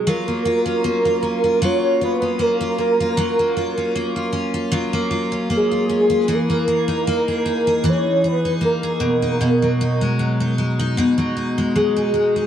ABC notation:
X:1
M:4/4
L:1/16
Q:"Swing 16ths" 1/4=77
K:F#
V:1 name="Soft synth lead"
A8 c2 B2 A2 A2- | A6 z6 G4 | A8 c2 B2 A2 A2- | A6 z6 G4 |]
V:2 name="Steel-string acoustic guitar"
[F,E] A, E C A, E C E [F,E]2 E C A, E C E | [F,E] A, E C A, E C E [F,E] A, E C A, E C E | [=E,G] A, G D A, G D G [E,G]2 G D A, G B,, D | [B,,D] F, D G, F, D G, D [B,,D] F, D G, F, D G, D |]